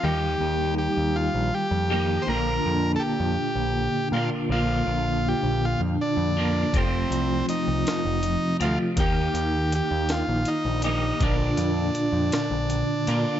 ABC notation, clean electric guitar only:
X:1
M:6/8
L:1/8
Q:3/8=54
K:Bb
V:1 name="Clean electric guitar"
[E,G,B,EG]4- [E,G,B,EG] [E,G,B,EG] | [B,,D,B,DF]4- [B,,D,B,DF] [B,,D,B,DF] | [B,,D,B,DF]4- [B,,D,B,DF] [B,,D,B,DF] | [F,,C,F,A,CF]4- [F,,C,F,A,CF] [F,,C,F,A,CF] |
[E,B,EG]4- [E,B,EG] [E,B,EG] | [B,,D,B,DF]4- [B,,D,B,DF] [B,,D,B,DF] |]